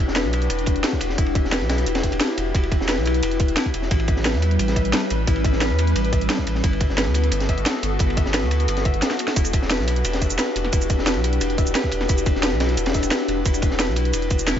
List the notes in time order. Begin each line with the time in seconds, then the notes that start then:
Already playing: D4 E4 F#4 G4 B4
0.00 E5
0.08 E1, snare
0.16 B4, snare, closed hi-hat, ride
0.25 B1
0.33 E4, closed hi-hat, ride
0.42 closed hi-hat
0.50 E1, closed hi-hat, ride
0.59 closed hi-hat
0.66 kick, closed hi-hat, ride
0.76 E1, closed hi-hat
0.84 snare, closed hi-hat, ride
0.93 kick
1.01 E1, closed hi-hat, ride
1.09 snare
1.18 E1 E4, kick, closed hi-hat, ride
1.26 ride
1.35 E5, kick, closed hi-hat, ride
1.44 E1, snare
1.52 B4, snare, closed hi-hat, ride
1.61 B1, snare
1.69 E4, snare, closed hi-hat, ride
1.78 closed hi-hat
1.86 E1, closed hi-hat, ride
1.95 snare, closed hi-hat, ride
2.03 kick, snare, closed hi-hat
2.12 E1, closed hi-hat, ride
2.21 snare, closed hi-hat, ride
2.38 E1, closed hi-hat, ride
2.55 E1 E4, kick, closed hi-hat, ride
2.63 ride
2.72 E5, kick, closed hi-hat, ride
2.81 E1, snare
2.89 B4, snare, closed hi-hat, ride
2.98 B1
3.06 E4, closed hi-hat, ride
3.14 closed hi-hat
3.23 E1, closed hi-hat, ride
3.31 closed hi-hat
3.40 kick, closed hi-hat, ride
3.48 E1, closed hi-hat
3.57 E4, snare, closed hi-hat, ride
3.66 kick, ride
3.74 E1, closed hi-hat, ride
3.82 snare
3.91 A1 G3 C#4 E4 B4, kick, closed hi-hat, ride
4.00 ride
4.08 E5, kick, closed hi-hat, ride
4.16 A1, snare
4.25 B4, snare, closed hi-hat, ride
4.34 E2, snare
4.42 E4, closed hi-hat, ride
4.51 closed hi-hat
4.59 A1, closed hi-hat, ride
4.68 snare, closed hi-hat
4.76 E5, kick, closed hi-hat, ride
4.85 A1, closed hi-hat
4.93 snare, closed hi-hat, ride
5.10 A1, closed hi-hat, ride
5.27 A1 E4, kick, closed hi-hat, ride
5.36 ride
5.44 E5, kick, closed hi-hat, ride
5.53 A1, snare
5.61 B4, snare, closed hi-hat, ride
5.70 E2
5.78 E4, closed hi-hat, ride
5.87 closed hi-hat
5.96 A1, closed hi-hat, ride
6.04 closed hi-hat
6.13 E5, kick, closed hi-hat, ride
6.21 A1, closed hi-hat
6.30 snare, closed hi-hat, ride
6.38 kick
6.47 A1, closed hi-hat, ride
6.55 snare
6.64 G1 B3 E4 F#4 A4, kick, closed hi-hat, ride
6.73 ride
6.80 E5, kick, closed hi-hat, ride
6.90 G1, snare
6.98 B4, snare, closed hi-hat, ride
7.06 D2, snare
7.14 E4, closed hi-hat, ride
7.24 closed hi-hat
7.32 G1, closed hi-hat, ride
7.40 snare, closed hi-hat
7.49 E5, kick, closed hi-hat, ride
7.58 G1, closed hi-hat
7.66 snare, closed hi-hat, ride
7.83 G1, closed hi-hat, ride
7.99 G1 E4, kick, closed hi-hat, ride
8.10 ride
8.17 E5, kick, closed hi-hat, ride
8.26 G1, snare
8.34 B4, snare, closed hi-hat, ride
8.43 D2
8.51 E4, closed hi-hat, ride
8.60 closed hi-hat
8.68 G1, closed hi-hat, ride
8.77 snare, closed hi-hat
8.85 E5, kick, closed hi-hat, ride
8.94 G1, closed hi-hat
9.02 snare, closed hi-hat, ride
9.11 snare
9.19 closed hi-hat, ride
9.28 snare
9.36 E1 D4 E4 G4, kick, closed hi-hat, ride, shaker
9.44 ride, shaker
9.53 E5, kick, closed hi-hat, ride, shaker
9.62 E1, snare
9.70 B4, snare, closed hi-hat, ride, shaker
9.79 B1, snare
9.87 E4, closed hi-hat, ride
9.96 closed hi-hat
10.05 E1, closed hi-hat, ride, shaker
10.13 snare, closed hi-hat
10.22 E5, kick, closed hi-hat, ride, shaker
10.30 E1, closed hi-hat, shaker
10.38 B4, snare, closed hi-hat, ride, shaker
10.56 E1, closed hi-hat, ride
10.64 snare
10.72 E1 E4, kick, closed hi-hat, ride, shaker
10.81 ride, shaker
10.90 E5, kick, closed hi-hat, ride, shaker
10.99 E1, snare
11.06 B4, snare, closed hi-hat, ride, shaker
11.16 B1
11.24 E4, closed hi-hat, ride
11.33 closed hi-hat
11.41 E1, closed hi-hat, ride, shaker
11.50 closed hi-hat
11.58 E5, kick, closed hi-hat, ride, shaker
11.67 E1, closed hi-hat, shaker
11.75 B4, snare, closed hi-hat, ride, shaker
11.84 kick
11.91 E1, closed hi-hat, ride
12.01 snare
12.09 E1 E4, kick, closed hi-hat, ride, shaker
12.18 ride, shaker
12.26 E5, kick, closed hi-hat, ride, shaker
12.35 E1, snare
12.43 B4, snare, closed hi-hat, ride, shaker
12.52 B1, snare
12.60 E4, snare, closed hi-hat, ride
12.69 closed hi-hat
12.77 E1, closed hi-hat, ride, shaker
12.86 snare, closed hi-hat, ride
12.94 E5, kick, snare, closed hi-hat, shaker
13.03 E1, closed hi-hat, ride, shaker
13.11 B4, snare, closed hi-hat, ride, shaker
13.28 E1, closed hi-hat, ride
13.45 E1 E4, kick, closed hi-hat, ride, shaker
13.54 ride, shaker
13.62 E5, kick, closed hi-hat, ride, shaker
13.71 E1, snare
13.79 B4, snare, closed hi-hat, ride, shaker
13.88 B1
13.96 E4, closed hi-hat, ride
14.05 closed hi-hat
14.13 E1, closed hi-hat, ride, shaker
14.22 closed hi-hat
14.30 kick, closed hi-hat, ride, shaker
14.39 E1, closed hi-hat, shaker
14.47 E4, snare, closed hi-hat, ride, shaker
14.56 kick